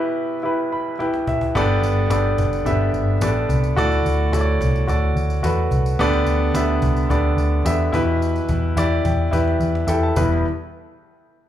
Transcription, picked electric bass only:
1.56 1.78 G1 loud
1.82 2.05 G1 medium
2.10 2.33 G1 loud
2.38 2.61 F#1 medium
2.66 2.89 G1 medium
2.93 3.16 G1 loud
3.21 3.44 A1 medium
3.49 3.72 C2 medium
3.78 4.00 D2 loud
4.06 4.28 D2 medium
4.33 4.56 D2 loud
4.61 4.83 C2 medium
4.88 5.11 D2 loud
5.16 5.39 D2 loud
5.44 5.67 E2 medium
5.71 5.94 C2 medium
5.99 6.22 D2 medium
6.26 6.50 D2 medium
6.54 6.77 D2 loud
6.83 7.05 C2 medium
7.10 7.33 D2 loud
7.37 7.60 D2 loud
7.65 7.88 E2 medium
7.93 8.39 E2 loud
8.49 8.72 E2 medium
8.76 8.99 E2 loud
9.05 9.28 E2 medium
9.33 9.56 E2 loud
9.60 9.83 E2 loud
9.87 10.10 E2 medium
10.16 10.42 E1 loud

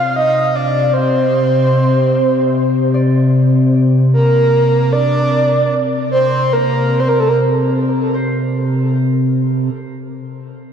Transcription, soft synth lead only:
0.00 0.15 F5 medium
0.16 0.57 D#5 loud
0.55 0.95 D5 medium
0.93 2.94 C5 medium
4.13 4.94 A#4 medium
4.92 5.73 D5 loud
6.11 6.54 C5 medium
6.53 7.01 A#4 medium
7.00 7.10 C5 medium
7.08 7.21 A#4 medium
7.20 7.30 A4 medium
7.29 7.36 A#4 medium

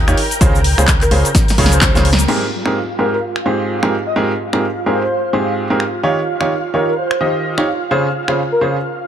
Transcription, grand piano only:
0.08 0.16 D#4 medium
0.08 0.16 F4 medium
0.08 0.16 G4 medium
0.08 0.16 C#5 loud
0.41 0.56 C#3 loud
0.41 0.56 C#4 medium
0.41 0.56 F4 medium
0.41 0.56 G#4 medium
0.41 0.56 C5 loud
0.78 0.89 C#3 medium
0.78 0.89 C#4 medium
0.78 0.89 F4 medium
0.78 0.89 G#4 medium
0.78 0.89 C5 medium
1.11 1.26 C#3 medium
1.11 1.26 C#4 medium
1.11 1.26 F4 medium
1.11 1.26 G#4 medium
1.11 1.26 C5 medium
1.58 1.92 C#3 medium
1.58 1.92 C#4 medium
1.58 1.92 F4 medium
1.58 1.92 G#4 medium
1.58 1.92 C#5 loud
1.95 2.07 C#3 medium
1.95 2.07 C#4 medium
1.95 2.07 F4 medium
1.95 2.07 G#4 medium
1.95 2.07 C5 loud
2.28 2.43 G#2 medium
2.28 2.43 C4 medium
2.28 2.43 G4 medium
2.28 2.43 G#4 medium
2.28 2.43 A#4 loud
2.66 2.77 G#2 medium
2.66 2.77 C4 medium
2.66 2.77 G4 medium
2.66 2.77 G#4 medium
2.66 2.77 A#4 medium
2.99 3.14 G#2 medium
2.99 3.14 C4 medium
2.99 3.14 G4 medium
2.99 3.14 G#4 medium
2.99 3.14 A#4 medium
3.46 3.79 G#2 medium
3.46 3.79 C4 medium
3.46 3.79 G4 medium
3.46 3.79 G#4 medium
3.46 3.79 C5 medium
3.83 3.94 G#2 medium
3.83 3.94 C4 medium
3.83 3.94 G4 medium
3.83 3.94 G#4 medium
3.83 3.94 A#4 medium
4.16 4.31 G#2 medium
4.16 4.31 C4 medium
4.16 4.31 G4 medium
4.16 4.31 G#4 medium
4.16 4.31 A#4 loud
4.53 4.64 G#2 medium
4.53 4.65 C4 medium
4.53 4.64 G4 medium
4.53 4.64 G#4 medium
4.53 4.64 A#4 medium
4.86 5.01 G#2 medium
4.86 5.01 C4 medium
4.86 5.01 G4 medium
4.86 5.01 G#4 medium
4.86 5.01 A#4 medium
5.33 5.67 G#2 medium
5.33 5.67 C4 medium
5.33 5.67 G4 medium
5.33 5.67 G#4 medium
5.33 5.67 C5 medium
5.70 5.82 G#2 medium
5.70 5.82 C4 medium
5.70 5.82 G4 medium
5.70 5.82 G#4 medium
5.70 5.82 A#4 medium
6.03 6.18 D#3 medium
6.03 6.18 D#4 medium
6.03 6.18 F4 medium
6.03 6.18 G4 medium
6.03 6.18 C#5 loud
6.41 6.52 D#3 medium
6.41 6.52 D#4 medium
6.41 6.52 F4 medium
6.41 6.52 G4 medium
6.41 6.52 C#5 medium
6.74 6.89 D#3 medium
6.74 6.89 D#4 medium
6.74 6.89 F4 medium
6.74 6.89 G4 medium
6.74 6.89 C#5 medium
7.21 7.54 D#3 medium
7.21 7.54 D#4 medium
7.21 7.54 F4 medium
7.21 7.54 G4 medium
7.21 7.54 D#5 medium
7.58 7.66 D#4 medium
7.58 7.66 F4 medium
7.58 7.66 G4 medium
7.58 7.66 C#5 medium
7.91 8.06 C#3 medium
7.91 8.06 C#4 medium
7.91 8.06 F4 medium
7.91 8.06 G#4 medium
7.91 8.06 C5 loud
8.28 8.39 C#3 medium
8.28 8.39 C#4 medium
8.28 8.39 F4 medium
8.28 8.39 G#4 medium
8.28 8.39 C5 medium
8.61 8.76 C#3 medium
8.61 8.76 C#4 medium
8.61 8.76 F4 medium
8.61 8.76 G#4 medium
8.61 8.76 C5 medium

